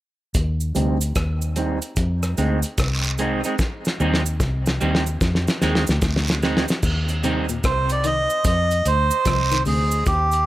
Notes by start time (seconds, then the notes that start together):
0.34 D#2, kick, closed hi-hat, cabasa
0.60 cabasa
0.75 D2 C3 G3 C4 D#4, closed hi-hat, cabasa
1.01 closed hi-hat, cabasa
1.15 D#2, kick, cross-stick, closed hi-hat, cabasa
1.42 cabasa
1.56 G3 C4 D#4, closed hi-hat, cabasa
1.82 closed hi-hat, cabasa
1.96 F2, kick, closed hi-hat, cabasa
2.23 cross-stick, cabasa
2.37 D2 G#3 C4 D#4, closed hi-hat, cabasa
2.62 closed hi-hat, cabasa
2.78 C2, kick, cross-stick, closed hi-hat, cabasa, long guiro
3.04 cabasa
3.18 G#3 C4 D#4, closed hi-hat, cabasa
3.44 G#3 C4 D#4, closed hi-hat, cabasa
3.59 kick, snare, cabasa
3.85 snare, cabasa
4.00 D#2 G3 C4 D#4, cabasa
4.14 snare
4.26 cabasa
4.40 C2, kick, snare, cabasa
4.66 snare, cabasa
4.81 D#2 G3 C4 D#4, cabasa
4.95 snare
5.06 cabasa
5.21 F2, kick, snare, cabasa
5.35 snare
5.48 snare, cabasa
5.62 D#2 G#3 C4 D#4, snare, cabasa
5.75 snare
5.87 D2, snare, cabasa
6.02 D2, kick, snare, cabasa, long guiro
6.16 snare
6.28 snare, cabasa
6.42 G#3 C4 D#4, snare, cabasa
6.57 snare
6.68 snare, cabasa
6.83 D#2, kick, crash, cabasa
7.09 closed hi-hat, cabasa
7.24 C3 G3 C4 D#4, closed hi-hat, cabasa
7.49 A#2, closed hi-hat, cabasa
7.64 C2 C3 C5, kick, cross-stick, closed hi-hat, cabasa
7.89 D5, closed hi-hat, cabasa
8.04 D#3 D#5, closed hi-hat, cabasa
8.30 cabasa
8.44 F2 D#5, kick, closed hi-hat, cabasa
8.71 closed hi-hat, cabasa
8.85 D2 C5, closed hi-hat, cabasa
9.11 cabasa
9.25 C2 F3, kick, cross-stick, closed hi-hat, cabasa, long guiro
9.51 D#3, closed hi-hat, cabasa
9.65 D2 C3 G#4, open hi-hat, cabasa
9.91 cabasa
10.06 D#2 G4, kick, closed hi-hat, cabasa
10.32 closed hi-hat, cabasa